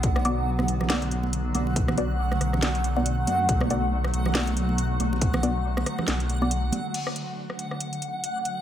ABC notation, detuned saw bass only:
X:1
M:4/4
L:1/8
Q:"Swing 16ths" 1/4=139
K:Bm
V:1 name="Detuned saw bass" clef=bass
B,,,3 B,,,4 B,,,- | B,,,3 B,,,4 F,, | B,,,3 B,,,4 B,,,- | B,,,3 z B,,,3 z |
z8 |]